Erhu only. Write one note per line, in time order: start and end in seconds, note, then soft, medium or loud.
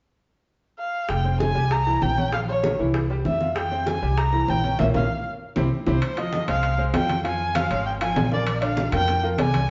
0.79 1.11 F5 medium
1.10 1.40 G5 medium
1.41 1.73 G#5 loud
1.72 2.04 A#5 loud
2.02 2.33 G5 loud
2.33 2.40 F5 medium
2.49 2.77 C#5 medium
3.26 3.54 E5 medium
3.57 3.90 G5 medium
3.88 4.20 G#5 medium
4.18 4.51 A#5 loud
4.50 4.79 G5 loud
4.80 4.87 E5 medium
4.96 5.24 F5 medium
5.88 6.20 C5 medium
6.18 6.48 D#5 medium
6.49 6.77 F5 loud
6.95 7.23 G5 medium
7.26 7.57 G#5 medium
7.56 7.86 F5 loud
7.86 7.93 G5 medium
8.03 8.30 G#5 medium
8.33 8.61 D5 medium
8.63 8.91 F5 medium
8.94 9.22 G5 loud
9.40 9.70 G#5 loud